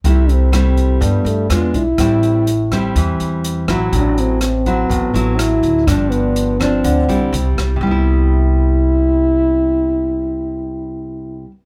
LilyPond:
<<
  \new Staff \with { instrumentName = "French horn" } { \time 4/4 \key c \major \tempo 4 = 124 e'8 c'4. b8 a8 b8 e'8~ | e'2~ e'8 r4. | d'8 c'4. b4 e'4 | d'8 b4 c'2 r8 |
e'1~ | e'1 | }
  \new Staff \with { instrumentName = "Nylon-string guitar" } { \time 4/4 \key c \major << { <g a e'>4 <g a e'>2 <gis d' f'>8 r8 | <g c' e'>4 r8 <g c' e'>2 <fis c' e'>8~ | <fis c' e'>4 r8 <fis c' e'>4 <fis c' e'>4. | <f d'>4. <f c' d'>4 <g e'>4. |
<c g b e'>1~ | <c g b e'>1 | } \\ { c2 g,4 r4 | a,2 e2 | a,2 a,2 | g,2 d4 r4 |
r1 | r1 | } >> }
  \new Staff \with { instrumentName = "Upright bass" } { \clef bass \time 4/4 \key c \major c,2 g,8 g,8 e,8 b,,8 | a,,2 e,8 e,4 a,,8 | a,,2 a,,8 a,,4 d,8 | g,,2 d,8 b,,8 c,8 c,8 |
c,1~ | c,1 | }
  \new DrumStaff \with { instrumentName = "Drums" } \drummode { \time 4/4 <hh bd>8 hh8 <hh ss>8 <hh bd>8 <hh bd>8 hh8 <hh ss>8 <hh bd>8 | <hh bd ss>8 hh8 hh8 <hh bd ss>8 <hh bd>8 hh8 hh8 <hh bd ss>8 | <hh bd>8 hh8 <hh ss>8 <hh bd>8 <hh bd>8 hh8 <hh ss>8 <hh bd>8 | <hh bd ss>8 hh8 hh8 <hh bd ss>8 <hh bd>8 hh8 hh8 <hh bd ss>8 |
r4 r4 r4 r4 | r4 r4 r4 r4 | }
>>